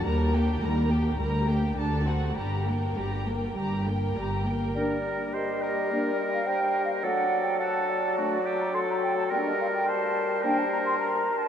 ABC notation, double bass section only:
X:1
M:4/4
L:1/8
Q:1/4=105
K:Gm
V:1 name="Double bass section" clef=bass
E,,2 E,,2 D,,2 D,,2 | G,,,2 G,,,2 G,,,2 G,,,2 | z8 | z8 |
z8 |]